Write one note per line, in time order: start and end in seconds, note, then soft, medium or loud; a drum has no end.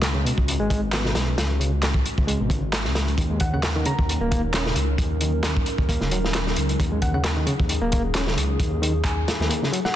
0.00 0.23 C#2 medium
0.00 3.14 G#3 medium
0.00 9.96 C#4 medium
0.00 3.15 F#4 medium
0.00 3.15 B4 medium
0.00 snare loud
0.00 clap loud
0.00 closed hi-hat medium
0.15 0.24 C#3 loud
0.25 0.31 B2 loud
0.25 closed hi-hat medium
0.38 0.56 C#2 loud
0.38 kick medium
0.48 closed hi-hat medium
0.60 1.13 G#1 medium
0.60 0.68 G#3 loud
0.70 0.80 G#3 medium
0.70 kick medium
0.70 closed hi-hat medium
0.92 1.02 B3 medium
0.92 snare loud
0.92 clap loud
0.92 closed hi-hat medium
1.04 1.15 B2 medium
1.04 snare medium
1.15 1.35 B1 loud
1.15 snare loud
1.15 closed hi-hat medium
1.38 2.03 C#2 medium
1.38 snare loud
1.38 closed hi-hat medium
1.60 1.70 C#3 loud
1.60 closed hi-hat medium
1.82 snare loud
1.82 clap loud
1.82 closed hi-hat medium
1.94 kick loud
2.06 closed hi-hat medium
2.18 2.37 C#2 loud
2.18 kick medium
2.27 2.39 G#3 medium
2.27 closed hi-hat medium
2.40 2.87 G#1 medium
2.40 2.49 B2 medium
2.50 2.62 C#3 medium
2.50 kick medium
2.50 closed hi-hat medium
2.73 snare loud
2.73 clap loud
2.73 closed hi-hat medium
2.85 3.16 C#2 loud
2.85 snare soft
2.95 snare loud
2.95 closed hi-hat medium
3.08 closed hi-hat soft
3.18 3.83 D#2 loud
3.18 3.28 D#3 medium
3.18 9.96 F#3 medium
3.18 9.96 D#4 medium
3.18 6.76 A#4 medium
3.18 kick loud
3.18 closed hi-hat medium
3.30 3.39 G#3 medium
3.40 3.51 D#3 medium
3.40 3.49 F#5 medium
3.40 kick medium
3.40 closed hi-hat medium
3.54 3.63 C#3 medium
3.54 3.60 F#5 medium
3.63 snare loud
3.63 clap loud
3.63 closed hi-hat medium
3.76 3.85 D#3 loud
3.85 3.92 C#3 loud
3.85 4.31 A#5 medium
3.85 closed hi-hat medium
3.99 4.17 D#2 loud
3.99 kick medium
4.09 closed hi-hat medium
4.21 4.74 D#1 medium
4.21 4.29 A#3 medium
4.31 4.41 A#3 medium
4.31 kick medium
4.31 closed hi-hat medium
4.54 4.64 C#4 medium
4.54 snare loud
4.54 clap loud
4.54 closed hi-hat medium
4.66 4.76 C#3 medium
4.66 snare soft
4.76 4.96 C#2 loud
4.76 closed hi-hat medium
4.98 5.64 D#2 medium
4.98 kick loud
4.98 closed hi-hat medium
5.21 5.31 D#3 medium
5.21 closed hi-hat medium
5.43 snare loud
5.43 clap loud
5.43 closed hi-hat medium
5.57 kick medium
5.66 closed hi-hat medium
5.78 5.97 D#2 loud
5.78 kick medium
5.89 6.01 A#3 medium
5.89 kick loud
5.89 closed hi-hat loud
6.01 6.54 D#1 medium
6.01 6.10 C#3 medium
6.01 snare soft
6.11 6.18 F#3 loud
6.11 closed hi-hat medium
6.24 snare soft
6.34 snare loud
6.34 clap loud
6.34 closed hi-hat medium
6.47 snare medium
6.56 6.76 C#2 medium
6.56 closed hi-hat medium
6.69 closed hi-hat soft
6.79 7.45 D#2 medium
6.79 6.89 D#3 medium
6.79 9.96 G#4 medium
6.79 kick loud
6.79 closed hi-hat medium
6.92 7.00 G#3 medium
7.02 7.12 D#3 medium
7.02 7.10 F#5 medium
7.02 kick loud
7.02 closed hi-hat medium
7.14 7.24 C#3 loud
7.14 7.21 F#5 medium
7.24 snare loud
7.24 clap loud
7.24 closed hi-hat medium
7.37 7.46 D#3 loud
7.47 7.53 C#3 loud
7.47 closed hi-hat medium
7.60 7.78 D#2 loud
7.60 kick medium
7.69 closed hi-hat medium
7.82 8.35 D#1 medium
7.82 7.90 A#3 loud
7.92 8.02 A#3 medium
7.92 kick medium
7.92 closed hi-hat medium
8.14 8.24 C#4 medium
8.14 snare loud
8.14 clap medium
8.14 closed hi-hat medium
8.27 8.37 C#3 medium
8.27 snare medium
8.37 8.57 C#2 medium
8.37 closed hi-hat medium
8.60 9.25 D#2 loud
8.60 kick loud
8.60 closed hi-hat medium
8.82 8.92 D#3 loud
8.82 closed hi-hat medium
9.05 9.21 G#5 medium
9.05 kick medium
9.05 clap loud
9.05 closed hi-hat medium
9.28 snare medium
9.28 closed hi-hat medium
9.40 9.50 D#2 loud
9.40 snare soft
9.49 9.61 A#3 medium
9.49 closed hi-hat loud
9.62 9.70 C#3 medium
9.62 snare soft
9.72 9.78 F#3 loud
9.72 closed hi-hat medium
9.85 9.96 F#5 medium
9.85 snare soft